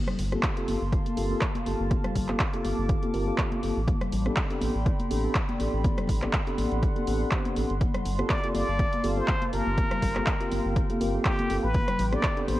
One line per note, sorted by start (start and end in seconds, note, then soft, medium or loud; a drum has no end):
0.00 3.84 A#3 medium
0.00 3.84 F5 medium
0.00 3.84 A5 medium
0.00 1.89 C6 medium
0.07 cross-stick medium
0.07 closed hi-hat soft
0.07 low conga medium
0.19 0.36 G1 loud
0.19 open hi-hat loud
0.19 low conga medium
0.32 0.53 A#3 medium
0.32 0.53 C4 medium
0.32 0.53 F4 medium
0.32 0.53 G4 medium
0.32 0.53 A4 medium
0.32 cross-stick medium
0.32 closed hi-hat soft
0.32 high conga medium
0.43 kick loud
0.43 clap loud
0.43 closed hi-hat medium
0.57 0.80 A#3 medium
0.57 0.81 C4 medium
0.57 0.81 F4 medium
0.57 0.81 G4 medium
0.57 0.81 A4 loud
0.57 closed hi-hat medium
0.68 0.76 G1 medium
0.68 open hi-hat medium
0.68 high conga medium
0.81 0.97 G1 medium
0.92 kick loud
0.92 closed hi-hat medium
1.06 closed hi-hat medium
1.06 high conga medium
1.17 1.34 G1 medium
1.17 1.28 A#3 medium
1.17 1.29 C4 medium
1.17 1.29 F4 medium
1.17 1.29 G4 medium
1.17 1.29 A4 medium
1.17 open hi-hat loud
1.30 1.44 A#3 medium
1.30 1.45 C4 medium
1.30 1.45 F4 medium
1.30 1.45 G4 medium
1.30 1.45 A4 medium
1.41 kick loud
1.41 clap loud
1.41 closed hi-hat medium
1.55 closed hi-hat medium
1.55 high conga medium
1.66 1.75 G1 medium
1.66 2.26 A#3 medium
1.66 2.26 C4 medium
1.66 2.26 F4 medium
1.66 2.26 G4 medium
1.66 2.26 A4 medium
1.66 open hi-hat medium
1.80 1.95 G1 medium
1.91 3.86 D6 medium
1.91 kick loud
1.91 closed hi-hat medium
1.91 high conga medium
2.04 cross-stick medium
2.04 closed hi-hat soft
2.04 low conga medium
2.15 2.33 G1 loud
2.15 kick medium
2.15 open hi-hat loud
2.15 low conga medium
2.28 2.43 A#3 medium
2.28 2.43 C4 medium
2.28 2.43 F4 medium
2.28 2.43 G4 medium
2.28 2.43 A4 medium
2.28 cross-stick medium
2.28 clap soft
2.28 closed hi-hat soft
2.28 high conga medium
2.40 kick loud
2.40 clap loud
2.40 closed hi-hat medium
2.53 2.99 A#3 medium
2.53 2.99 C4 medium
2.53 3.00 F4 medium
2.53 3.00 G4 medium
2.53 3.00 A4 loud
2.53 closed hi-hat medium
2.65 2.73 G1 medium
2.65 open hi-hat medium
2.65 high conga medium
2.78 2.94 G1 medium
2.89 kick loud
2.89 closed hi-hat medium
3.03 3.12 A#3 medium
3.03 3.12 C4 medium
3.03 3.12 F4 medium
3.03 3.12 G4 medium
3.03 3.12 A4 medium
3.03 closed hi-hat soft
3.03 high conga medium
3.14 3.31 G1 medium
3.14 3.25 A#3 medium
3.14 3.25 C4 medium
3.14 3.25 F4 medium
3.14 3.25 G4 medium
3.14 3.25 A#4 loud
3.14 open hi-hat loud
3.27 3.60 A#3 medium
3.27 3.60 C4 medium
3.27 3.60 F4 medium
3.27 3.60 G4 medium
3.27 3.61 A4 medium
3.38 kick loud
3.38 clap loud
3.38 closed hi-hat medium
3.52 closed hi-hat medium
3.52 high conga medium
3.63 3.71 G1 medium
3.63 3.79 A#3 medium
3.63 3.79 C4 medium
3.63 3.79 F4 medium
3.63 3.79 G4 medium
3.63 3.79 A4 medium
3.63 open hi-hat medium
3.77 3.92 A1 medium
3.88 7.77 D5 medium
3.88 5.82 G5 medium
3.88 7.77 B5 medium
3.88 11.71 C6 medium
3.88 kick loud
3.88 closed hi-hat medium
3.88 high conga loud
4.01 cross-stick medium
4.01 closed hi-hat soft
4.01 low conga medium
4.12 4.29 A1 loud
4.12 open hi-hat loud
4.12 low conga medium
4.25 4.46 B3 medium
4.25 4.46 C4 medium
4.25 4.46 D4 medium
4.25 4.46 G4 medium
4.25 4.46 A4 medium
4.25 cross-stick medium
4.25 closed hi-hat soft
4.25 high conga medium
4.36 kick loud
4.36 clap loud
4.36 closed hi-hat medium
4.50 4.74 B3 medium
4.50 4.74 C4 medium
4.50 4.74 D4 medium
4.50 4.74 G4 medium
4.50 4.74 A4 loud
4.50 closed hi-hat soft
4.61 4.70 A1 medium
4.61 open hi-hat loud
4.61 high conga medium
4.75 4.90 A1 medium
4.86 kick loud
4.86 closed hi-hat medium
5.00 closed hi-hat soft
5.00 high conga medium
5.10 5.28 A1 medium
5.10 5.22 B3 medium
5.10 5.22 C4 medium
5.10 5.22 D4 medium
5.10 5.22 G4 medium
5.10 5.22 A4 loud
5.10 open hi-hat loud
5.24 5.38 B3 medium
5.24 5.38 C4 medium
5.24 5.38 D4 medium
5.24 5.38 G4 medium
5.24 5.38 A4 medium
5.35 kick loud
5.35 clap loud
5.35 closed hi-hat medium
5.49 closed hi-hat soft
5.49 high conga medium
5.59 5.68 A1 medium
5.59 6.19 B3 medium
5.59 6.19 C4 medium
5.59 6.19 D4 medium
5.59 6.19 G4 medium
5.59 6.19 A4 medium
5.59 open hi-hat medium
5.73 5.89 A1 loud
5.84 7.79 F#5 medium
5.84 kick loud
5.84 closed hi-hat medium
5.84 high conga medium
5.97 cross-stick medium
5.97 closed hi-hat soft
5.97 low conga medium
6.07 6.26 A1 medium
6.07 kick medium
6.07 open hi-hat loud
6.07 low conga medium
6.22 6.36 B3 medium
6.22 6.36 C4 medium
6.22 6.36 D4 medium
6.22 6.36 G4 medium
6.22 6.36 A4 medium
6.22 cross-stick medium
6.22 clap soft
6.22 closed hi-hat soft
6.22 high conga medium
6.33 kick loud
6.33 clap loud
6.33 closed hi-hat medium
6.47 6.93 B3 medium
6.47 6.93 C4 medium
6.47 6.93 D4 medium
6.47 6.93 G4 medium
6.47 6.93 A4 loud
6.47 closed hi-hat soft
6.58 6.66 A1 medium
6.58 open hi-hat medium
6.58 high conga medium
6.71 6.87 A1 medium
6.71 closed hi-hat soft
6.83 kick loud
6.83 closed hi-hat medium
6.96 7.05 B3 medium
6.96 7.05 C4 medium
6.96 7.05 D4 medium
6.96 7.05 G4 medium
6.96 7.05 A4 medium
6.96 closed hi-hat soft
6.96 high conga medium
7.07 7.24 A1 medium
7.07 7.29 B3 medium
7.07 7.29 C4 medium
7.07 7.29 D4 medium
7.07 7.29 G4 medium
7.07 7.29 A4 medium
7.07 open hi-hat loud
7.31 7.54 B3 medium
7.31 7.54 C4 medium
7.31 7.54 D4 medium
7.31 7.54 G4 medium
7.31 kick loud
7.31 clap loud
7.31 closed hi-hat medium
7.45 closed hi-hat soft
7.45 high conga medium
7.56 7.65 A1 medium
7.56 7.72 B3 medium
7.56 7.72 C4 medium
7.56 7.72 D4 medium
7.56 7.72 G4 medium
7.56 7.72 A4 medium
7.56 open hi-hat medium
7.70 7.86 G1 medium
7.70 closed hi-hat soft
7.81 11.71 A#3 medium
7.81 11.71 F5 medium
7.81 9.76 A5 medium
7.81 kick loud
7.81 closed hi-hat medium
7.81 high conga medium
7.94 cross-stick medium
7.94 closed hi-hat soft
7.94 low conga medium
8.05 8.23 G1 loud
8.05 open hi-hat loud
8.05 low conga medium
8.19 8.40 A#3 medium
8.19 8.40 C4 medium
8.19 8.40 F4 medium
8.19 8.40 G4 medium
8.19 8.40 A4 medium
8.19 cross-stick medium
8.19 closed hi-hat soft
8.19 high conga medium
8.30 8.53 D5 loud
8.30 kick loud
8.30 clap loud
8.30 closed hi-hat medium
8.43 8.67 A#3 medium
8.43 8.67 C4 medium
8.43 8.67 F4 medium
8.43 8.67 G4 medium
8.43 8.67 A4 loud
8.43 closed hi-hat soft
8.55 8.63 G1 medium
8.55 9.19 D5 loud
8.55 open hi-hat medium
8.55 high conga medium
8.68 8.84 G1 medium
8.79 kick loud
8.79 closed hi-hat medium
8.93 closed hi-hat soft
8.93 high conga medium
9.04 9.21 G1 medium
9.04 9.15 A#3 medium
9.04 9.15 C4 medium
9.04 9.15 F4 medium
9.04 9.15 G4 medium
9.04 9.16 A4 loud
9.04 open hi-hat loud
9.04 muted conga soft
9.17 9.31 A#3 medium
9.17 9.31 C4 medium
9.17 9.31 F4 medium
9.17 9.31 G4 medium
9.17 9.31 A4 medium
9.17 9.52 C5 loud
9.17 muted conga soft
9.28 kick loud
9.28 clap loud
9.28 closed hi-hat medium
9.42 closed hi-hat soft
9.42 high conga medium
9.53 9.61 G1 medium
9.53 10.12 A#3 medium
9.53 10.12 C4 medium
9.53 10.13 F4 medium
9.53 10.13 G4 medium
9.53 10.97 A#4 loud
9.53 10.13 A#4 medium
9.53 open hi-hat medium
9.67 9.82 G1 medium
9.67 muted conga medium
9.78 12.60 G5 medium
9.78 kick loud
9.78 closed hi-hat medium
9.78 high conga medium
9.91 cross-stick medium
9.91 closed hi-hat soft
9.91 low conga medium
10.02 10.19 G1 loud
10.02 kick medium
10.02 open hi-hat loud
10.02 low conga medium
10.15 10.30 A#3 medium
10.15 10.30 C4 medium
10.15 10.30 F4 medium
10.15 10.30 G4 medium
10.15 10.30 A4 medium
10.15 cross-stick medium
10.15 clap soft
10.15 closed hi-hat soft
10.15 high conga medium
10.26 kick loud
10.26 clap loud
10.26 closed hi-hat medium
10.40 10.86 A#3 medium
10.40 10.86 C4 medium
10.40 10.86 F4 medium
10.40 10.86 G4 medium
10.40 10.86 A#4 medium
10.40 closed hi-hat medium
10.51 10.60 G1 medium
10.51 open hi-hat medium
10.51 high conga medium
10.65 10.81 G1 medium
10.76 kick loud
10.76 closed hi-hat medium
10.89 10.99 A#3 medium
10.89 10.99 C4 medium
10.89 10.99 F4 medium
10.89 10.99 G4 medium
10.89 10.99 A4 medium
10.89 closed hi-hat medium
10.89 muted conga soft
10.89 high conga medium
11.00 11.18 G1 medium
11.00 11.12 A#3 medium
11.00 11.12 C4 medium
11.00 11.12 F4 medium
11.00 11.12 G4 medium
11.00 11.12 A#4 loud
11.00 open hi-hat loud
11.14 11.47 A#3 medium
11.14 11.47 C4 medium
11.14 11.47 F4 medium
11.14 11.47 G4 medium
11.14 11.47 A4 medium
11.25 11.65 G4 medium
11.25 kick loud
11.25 clap loud
11.25 closed hi-hat medium
11.39 closed hi-hat soft
11.39 high conga medium
11.49 11.58 G1 medium
11.49 11.65 A#3 medium
11.49 11.65 C4 medium
11.49 11.66 F4 medium
11.49 11.66 G4 medium
11.49 11.66 A4 medium
11.49 open hi-hat medium
11.49 muted conga medium
11.63 11.79 A1 loud
11.63 12.14 B4 loud
11.74 12.60 B5 medium
11.74 12.60 D6 medium
11.74 kick loud
11.74 closed hi-hat medium
11.74 high conga medium
11.88 cross-stick medium
11.88 closed hi-hat medium
11.88 low conga medium
11.99 12.16 A1 loud
11.99 open hi-hat loud
11.99 low conga medium
12.12 12.33 B3 medium
12.12 12.33 C4 medium
12.12 12.33 D4 medium
12.12 12.33 G4 medium
12.12 12.33 A4 medium
12.12 12.47 D5 loud
12.12 cross-stick medium
12.12 closed hi-hat soft
12.12 high conga medium
12.23 kick loud
12.23 clap loud
12.23 closed hi-hat medium
12.37 12.60 B3 medium
12.37 12.60 C4 medium
12.37 12.60 D4 medium
12.37 12.60 G4 medium
12.37 12.60 A4 loud
12.37 closed hi-hat medium
12.48 12.57 A1 medium
12.48 12.60 C5 loud
12.48 open hi-hat medium
12.48 high conga medium